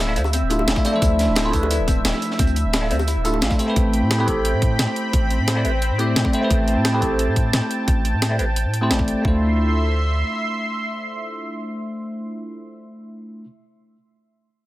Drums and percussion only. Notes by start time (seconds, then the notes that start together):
0.07 snare
0.16 closed hi-hat
0.24 closed hi-hat, high bongo
0.33 closed hi-hat
0.50 closed hi-hat, high bongo
0.59 high bongo
0.68 snare, closed hi-hat
0.76 kick, closed hi-hat
0.85 closed hi-hat, high bongo
1.02 kick, closed hi-hat
1.19 snare, closed hi-hat
1.35 snare, closed hi-hat
1.53 kick, closed hi-hat
1.63 high bongo
1.71 closed hi-hat
1.88 kick, closed hi-hat
2.05 snare, closed hi-hat
2.13 snare, high bongo
2.22 closed hi-hat
2.31 snare
2.39 kick, closed hi-hat
2.47 closed hi-hat
2.56 closed hi-hat
2.73 snare, closed hi-hat
2.83 snare
2.91 closed hi-hat
2.99 closed hi-hat, high bongo
3.07 closed hi-hat
3.25 closed hi-hat, high bongo
3.34 high bongo
3.42 snare, closed hi-hat
3.51 kick, closed hi-hat
3.59 closed hi-hat, high bongo
3.76 kick, closed hi-hat
3.93 closed hi-hat
4.11 snare, closed hi-hat
4.28 kick, closed hi-hat
4.45 closed hi-hat
4.62 kick, closed hi-hat
4.79 snare, closed hi-hat
4.96 closed hi-hat
5.13 kick, closed hi-hat
5.30 closed hi-hat
5.48 snare, closed hi-hat
5.65 closed hi-hat
5.82 closed hi-hat
5.99 closed hi-hat
6.16 snare, closed hi-hat
6.25 kick
6.33 closed hi-hat
6.50 kick, closed hi-hat
6.68 closed hi-hat
6.85 snare, closed hi-hat
7.02 kick, closed hi-hat
7.19 closed hi-hat
7.36 kick, closed hi-hat
7.53 snare, closed hi-hat
7.71 closed hi-hat
7.88 kick, closed hi-hat
8.05 closed hi-hat
8.22 snare, closed hi-hat
8.39 closed hi-hat
8.56 closed hi-hat
8.74 closed hi-hat
8.91 snare, closed hi-hat
8.99 kick
9.08 closed hi-hat
9.25 kick